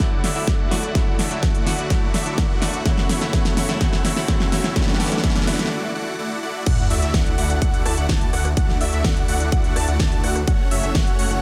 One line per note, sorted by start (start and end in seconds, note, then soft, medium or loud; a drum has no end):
0.00 2.82 D2 medium
0.00 0.32 D3 medium
0.00 2.82 D3 medium
0.00 0.33 F#3 medium
0.00 0.20 A3 medium
0.00 0.33 A3 medium
0.00 0.20 E4 medium
0.00 2.82 E4 medium
0.00 0.33 E4 medium
0.00 0.20 F#4 medium
0.00 4.72 F#4 medium
0.00 0.20 D5 medium
0.00 0.20 F#5 medium
0.00 snare medium
0.00 closed hi-hat medium
0.00 riser medium
0.24 0.34 A3 medium
0.24 0.34 E4 medium
0.24 0.34 F#4 medium
0.24 0.34 D5 medium
0.24 0.34 E5 medium
0.24 snare medium
0.24 open hi-hat loud
0.35 0.48 D3 medium
0.35 0.48 F#3 medium
0.35 0.46 A3 medium
0.35 0.48 A3 medium
0.35 0.46 E4 medium
0.35 0.48 E4 medium
0.35 0.46 F#4 medium
0.35 0.46 D5 medium
0.35 0.46 E5 medium
0.35 open hi-hat medium
0.47 0.68 E4 medium
0.47 0.68 F#4 medium
0.47 kick loud
0.47 snare medium
0.47 closed hi-hat medium
0.71 0.93 D3 medium
0.71 0.93 F#3 medium
0.71 0.92 A3 medium
0.71 0.93 A3 medium
0.71 0.92 E4 medium
0.71 0.92 F#4 medium
0.71 0.94 F#4 medium
0.71 0.92 D5 medium
0.71 0.92 F#5 medium
0.71 snare medium
0.71 open hi-hat loud
0.83 closed hi-hat soft
0.94 1.28 D3 medium
0.94 1.28 F#3 medium
0.94 1.15 A3 medium
0.94 1.28 A3 medium
0.94 1.15 E4 medium
0.94 1.28 E4 medium
0.94 1.15 F#4 medium
0.94 1.15 D5 medium
0.94 1.15 F#5 medium
0.94 kick loud
0.94 snare medium
0.94 closed hi-hat medium
1.19 1.29 A3 medium
1.19 1.29 E4 medium
1.19 1.29 F#4 medium
1.19 1.29 D5 medium
1.19 1.29 E5 medium
1.19 snare medium
1.19 open hi-hat loud
1.30 1.43 D3 medium
1.30 1.43 F#3 medium
1.30 1.41 A3 medium
1.30 1.43 A3 medium
1.30 1.41 E4 medium
1.30 1.44 E4 medium
1.30 1.41 F#4 medium
1.30 1.41 D5 medium
1.30 1.41 E5 medium
1.30 closed hi-hat medium
1.43 1.64 A3 medium
1.43 1.64 F#4 medium
1.43 1.64 F#5 medium
1.43 kick loud
1.43 snare medium
1.43 closed hi-hat medium
1.55 closed hi-hat soft
1.66 1.88 D3 medium
1.66 1.88 F#3 medium
1.66 1.88 A3 medium
1.66 1.89 A3 medium
1.66 1.88 E4 medium
1.66 1.88 F#4 medium
1.66 1.89 F#4 medium
1.66 1.88 D5 medium
1.66 1.88 F#5 medium
1.66 snare medium
1.66 open hi-hat loud
1.79 closed hi-hat medium
1.90 2.23 D3 medium
1.90 2.23 F#3 medium
1.90 2.11 A3 medium
1.90 2.23 A3 medium
1.90 2.11 E4 medium
1.90 2.24 E4 medium
1.90 2.11 F#4 medium
1.90 2.11 D5 medium
1.90 2.11 F#5 medium
1.90 kick loud
1.90 snare medium
1.90 closed hi-hat medium
2.14 2.24 A3 medium
2.14 2.24 E4 medium
2.14 2.24 F#4 medium
2.14 2.24 D5 medium
2.14 2.24 E5 medium
2.14 snare medium
2.14 open hi-hat loud
2.25 2.38 D3 medium
2.25 2.38 F#3 medium
2.25 2.39 A3 medium
2.25 2.36 A3 medium
2.25 2.36 E4 medium
2.25 2.39 E4 medium
2.25 2.36 F#4 medium
2.25 2.36 D5 medium
2.25 2.36 E5 medium
2.25 closed hi-hat medium
2.38 2.59 A3 medium
2.38 2.59 F#4 medium
2.38 2.59 D5 medium
2.38 2.59 F#5 medium
2.38 kick loud
2.38 snare medium
2.38 closed hi-hat medium
2.61 2.83 D3 medium
2.61 2.84 F#3 medium
2.61 2.83 A3 medium
2.61 2.84 A3 medium
2.61 2.83 E4 medium
2.61 2.83 F#4 medium
2.61 2.84 F#4 medium
2.61 2.83 D5 medium
2.61 2.83 F#5 medium
2.61 snare medium
2.61 open hi-hat loud
2.74 closed hi-hat soft
2.85 4.74 F#2 medium
2.85 3.18 C#3 medium
2.85 4.74 C#3 medium
2.85 3.18 F#3 medium
2.85 3.06 A3 medium
2.85 4.74 A3 medium
2.85 3.19 A3 medium
2.85 3.06 E4 medium
2.85 3.19 E4 medium
2.85 3.06 F#4 medium
2.85 3.06 C#5 medium
2.85 3.06 F#5 medium
2.85 kick loud
2.85 snare medium
2.85 closed hi-hat medium
2.98 snare medium
3.09 3.20 A3 medium
3.09 3.20 E4 medium
3.09 3.20 F#4 medium
3.09 3.20 C#5 medium
3.09 3.20 E5 medium
3.09 snare medium
3.09 open hi-hat loud
3.21 3.31 C#3 medium
3.21 3.31 F#3 medium
3.21 3.31 A3 medium
3.21 3.31 E4 medium
3.21 3.32 E4 medium
3.21 3.31 F#4 medium
3.21 3.31 C#5 medium
3.21 3.31 E5 medium
3.21 snare medium
3.21 closed hi-hat medium
3.32 3.66 C#3 medium
3.32 3.66 F#3 medium
3.32 3.53 A3 medium
3.32 3.66 A3 medium
3.32 3.53 E4 medium
3.32 3.66 E4 medium
3.32 3.53 F#4 medium
3.32 3.53 C#5 medium
3.32 kick loud
3.32 snare loud
3.32 closed hi-hat medium
3.45 snare medium
3.45 closed hi-hat soft
3.57 3.67 A3 medium
3.57 3.67 E4 medium
3.57 3.67 F#4 medium
3.57 3.67 C#5 medium
3.57 3.67 E5 medium
3.57 snare medium
3.57 open hi-hat loud
3.68 3.79 C#3 medium
3.68 3.79 F#3 medium
3.68 3.79 A3 medium
3.68 3.79 E4 medium
3.68 3.79 E4 loud
3.68 3.79 F#4 medium
3.68 3.79 C#5 medium
3.68 3.79 E5 loud
3.68 snare medium
3.68 closed hi-hat medium
3.80 4.13 C#3 medium
3.80 4.14 F#3 medium
3.80 4.01 A3 medium
3.80 4.14 A3 medium
3.80 4.01 E4 medium
3.80 4.14 E4 medium
3.80 4.01 F#4 medium
3.80 4.01 C#5 medium
3.80 4.01 F#5 medium
3.80 kick loud
3.80 snare loud
3.80 closed hi-hat medium
3.93 snare medium
4.05 4.15 A3 medium
4.05 4.15 E4 medium
4.05 4.15 F#4 medium
4.05 4.15 C#5 medium
4.05 4.15 E5 medium
4.05 snare loud
4.05 open hi-hat loud
4.16 4.26 C#3 medium
4.16 4.26 F#3 medium
4.16 4.27 A3 medium
4.16 4.27 E4 medium
4.16 4.27 F#4 medium
4.16 4.27 C#5 medium
4.16 4.27 E5 medium
4.16 snare medium
4.16 open hi-hat medium
4.28 4.61 C#3 medium
4.28 4.61 F#3 medium
4.28 4.49 A3 medium
4.28 4.61 A3 medium
4.28 4.49 E4 medium
4.28 4.62 E4 medium
4.28 4.49 F#4 medium
4.28 4.49 F#5 medium
4.28 kick loud
4.28 snare loud
4.28 closed hi-hat medium
4.40 snare medium
4.52 4.62 A3 medium
4.52 4.62 E4 medium
4.52 4.62 F#4 medium
4.52 4.62 C#5 medium
4.52 4.62 E5 medium
4.52 snare loud
4.52 open hi-hat medium
4.63 4.74 C#3 medium
4.63 4.74 F#3 medium
4.63 4.74 A3 medium
4.63 4.74 E4 medium
4.63 4.74 F#4 medium
4.63 4.74 C#5 medium
4.63 4.74 E5 loud
4.63 snare medium
4.63 closed hi-hat medium
4.75 5.70 G2 medium
4.75 4.98 D3 medium
4.75 5.70 D3 medium
4.75 4.98 F#3 medium
4.75 4.96 A3 medium
4.75 4.98 A3 medium
4.75 5.70 B3 medium
4.75 4.96 E4 medium
4.75 4.98 E4 medium
4.75 4.96 F#4 medium
4.75 5.70 G4 medium
4.75 4.96 D5 medium
4.75 4.96 F#5 medium
4.75 kick loud
4.75 snare loud
4.75 closed hi-hat medium
4.82 snare medium
4.88 snare medium
4.94 snare medium
4.99 5.21 D3 medium
4.99 5.22 F#3 medium
4.99 5.20 A3 medium
4.99 5.22 A3 medium
4.99 5.20 E4 medium
4.99 5.22 E4 medium
4.99 5.20 F#4 medium
4.99 5.20 D5 medium
4.99 5.20 F#5 medium
4.99 snare loud
4.99 open hi-hat loud
5.06 snare medium
5.12 snare medium
5.12 closed hi-hat medium
5.18 snare medium
5.23 5.45 D3 medium
5.23 5.46 F#3 medium
5.23 5.44 A3 medium
5.23 5.46 A3 medium
5.23 5.44 E4 medium
5.23 5.46 E4 medium
5.23 5.44 F#4 medium
5.23 kick loud
5.23 snare loud
5.23 closed hi-hat medium
5.30 snare medium
5.35 snare medium
5.35 closed hi-hat soft
5.41 snare loud
5.47 5.69 D3 medium
5.47 5.69 F#3 medium
5.47 5.68 A3 medium
5.47 5.70 A3 medium
5.47 5.68 E4 medium
5.47 5.70 E4 loud
5.47 5.68 F#4 medium
5.47 5.68 D5 medium
5.47 5.68 F#5 medium
5.47 snare loud
5.47 open hi-hat loud
5.53 snare medium
5.59 snare loud
5.59 closed hi-hat medium
5.65 snare medium
5.71 5.92 A3 medium
5.71 5.92 E4 medium
5.71 5.92 F#4 medium
5.71 5.92 D5 medium
5.71 5.92 F#5 medium
5.95 6.15 A3 medium
5.95 6.15 E4 medium
5.95 6.15 F#4 medium
5.95 6.15 D5 medium
5.95 6.15 F#5 medium
6.19 6.39 A3 medium
6.19 6.39 E4 medium
6.19 6.39 F#4 medium
6.19 6.39 D5 medium
6.19 6.39 F#5 medium
6.43 6.63 A3 medium
6.43 6.63 E4 medium
6.43 6.63 F#4 medium
6.43 6.63 D5 medium
6.43 6.63 F#5 medium
6.66 6.88 D2 loud
6.66 10.44 D3 medium
6.66 11.42 A3 medium
6.66 6.87 A3 medium
6.66 8.55 E4 medium
6.66 11.42 F#4 loud
6.66 6.87 F#5 medium
6.66 kick loud
6.66 closed hi-hat medium
6.66 crash loud
6.66 sub drop medium
6.90 7.00 D2 loud
6.90 7.01 A3 medium
6.90 7.01 E4 medium
6.90 7.01 F#4 medium
6.90 7.01 D5 medium
6.90 7.01 E5 medium
6.90 open hi-hat loud
7.02 7.12 D2 loud
7.02 7.12 A3 medium
7.02 7.12 E4 medium
7.02 7.12 F#4 medium
7.02 7.12 D5 medium
7.02 7.12 E5 medium
7.02 7.12 E5 loud
7.02 closed hi-hat medium
7.14 7.36 D2 loud
7.14 7.35 A3 medium
7.14 7.35 E4 medium
7.14 7.35 F#4 medium
7.14 7.35 D5 medium
7.14 7.35 F#5 medium
7.14 kick loud
7.14 snare loud
7.14 closed hi-hat medium
7.26 closed hi-hat soft
7.38 7.59 D2 loud
7.38 7.59 A3 medium
7.38 7.59 E4 medium
7.38 7.59 F#4 medium
7.38 7.59 D5 medium
7.38 7.59 F#5 loud
7.38 open hi-hat medium
7.50 closed hi-hat medium
7.62 7.83 A3 medium
7.62 7.83 E4 medium
7.62 7.83 F#4 medium
7.62 7.83 D5 medium
7.62 7.83 F#5 loud
7.62 kick loud
7.62 closed hi-hat medium
7.74 closed hi-hat soft
7.86 7.95 D2 loud
7.86 7.96 A3 loud
7.86 7.96 E4 medium
7.86 7.96 F#4 medium
7.86 7.96 D5 medium
7.86 7.96 A5 loud
7.86 cross-stick medium
7.86 open hi-hat loud
7.97 8.07 D2 loud
7.97 8.07 A3 medium
7.97 8.07 E4 medium
7.97 8.07 F#4 medium
7.97 8.07 D5 medium
7.97 8.07 F#5 medium
7.97 closed hi-hat medium
8.09 8.30 A3 medium
8.09 8.30 E4 medium
8.09 8.30 F#4 medium
8.09 8.30 A5 medium
8.09 kick loud
8.09 snare loud
8.09 closed hi-hat medium
8.21 closed hi-hat soft
8.33 8.55 D2 loud
8.33 8.48 A3 medium
8.33 8.48 E4 medium
8.33 8.48 F#4 medium
8.33 8.48 D5 medium
8.33 8.48 F#5 medium
8.33 cross-stick medium
8.33 open hi-hat medium
8.45 cross-stick medium
8.45 closed hi-hat medium
8.57 8.77 A3 medium
8.57 10.46 D4 medium
8.57 8.77 E4 medium
8.57 8.77 F#4 medium
8.57 8.77 D5 medium
8.57 8.77 F#5 medium
8.57 kick loud
8.57 closed hi-hat medium
8.69 snare soft
8.81 8.90 D2 loud
8.81 8.91 A3 medium
8.81 8.91 E4 medium
8.81 8.91 F#4 medium
8.81 8.91 D5 medium
8.81 8.91 E5 medium
8.81 open hi-hat loud
8.93 9.02 D2 loud
8.93 9.03 A3 medium
8.93 9.03 E4 medium
8.93 9.03 F#4 medium
8.93 9.03 D5 medium
8.93 9.03 E5 loud
8.93 closed hi-hat medium
9.04 9.26 A3 medium
9.04 9.26 E4 medium
9.04 9.26 F#5 medium
9.04 kick loud
9.04 snare loud
9.04 closed hi-hat medium
9.16 closed hi-hat soft
9.28 9.50 D2 loud
9.28 9.49 A3 medium
9.28 9.49 E4 medium
9.28 9.49 F#4 medium
9.28 9.49 D5 medium
9.28 9.49 F#5 loud
9.28 9.50 F#5 loud
9.28 open hi-hat loud
9.40 closed hi-hat medium
9.52 9.73 A3 loud
9.52 9.73 E4 medium
9.52 9.73 F#4 medium
9.52 9.73 D5 medium
9.52 9.73 F#5 loud
9.52 kick loud
9.52 closed hi-hat medium
9.64 closed hi-hat soft
9.76 9.86 D2 loud
9.76 9.86 A3 loud
9.76 9.86 E4 medium
9.76 9.86 F#4 medium
9.76 9.86 D5 medium
9.76 9.86 A5 loud
9.76 cross-stick medium
9.76 open hi-hat loud
9.88 9.98 D2 loud
9.88 9.97 A3 medium
9.88 9.97 E4 medium
9.88 9.97 F#4 medium
9.88 9.97 D5 medium
9.88 9.97 F#5 medium
9.88 closed hi-hat medium
10.00 10.21 D2 medium
10.00 10.20 A3 medium
10.00 10.20 E4 medium
10.00 10.20 F#4 medium
10.00 10.20 A5 medium
10.00 kick loud
10.00 snare loud
10.00 closed hi-hat medium
10.12 closed hi-hat soft
10.24 10.45 D2 loud
10.24 10.38 A3 medium
10.24 10.38 E4 medium
10.24 10.38 F#4 medium
10.24 10.38 D5 medium
10.24 10.38 F#5 medium
10.24 cross-stick medium
10.24 open hi-hat medium
10.36 cross-stick medium
10.36 closed hi-hat medium
10.47 10.69 F#1 loud
10.47 10.68 A3 medium
10.47 11.42 C#4 medium
10.47 10.68 C#4 medium
10.47 10.68 F#4 medium
10.47 10.68 C#5 medium
10.47 10.68 F#5 medium
10.47 kick loud
10.47 closed hi-hat medium
10.71 10.81 F#1 loud
10.71 10.81 A3 medium
10.71 10.81 C#4 medium
10.71 10.81 F#4 medium
10.71 10.81 C#5 medium
10.71 10.81 E5 medium
10.71 10.82 E5 medium
10.71 open hi-hat loud
10.83 10.93 F#1 loud
10.83 10.93 A3 medium
10.83 10.93 C#4 medium
10.83 10.93 F#4 medium
10.83 10.93 C#5 medium
10.83 10.93 E5 medium
10.83 10.93 E5 loud
10.83 closed hi-hat medium
10.95 11.16 A3 medium
10.95 11.16 C#4 medium
10.95 11.16 F#4 medium
10.95 11.16 C#5 medium
10.95 11.16 F#5 medium
10.95 kick loud
10.95 snare loud
10.95 closed hi-hat medium
11.07 closed hi-hat soft
11.19 11.40 F#1 loud
11.19 11.40 A3 medium
11.19 11.40 C#4 medium
11.19 11.40 F#4 medium
11.19 11.40 C#5 medium
11.19 11.40 F#5 loud
11.19 open hi-hat loud
11.31 closed hi-hat medium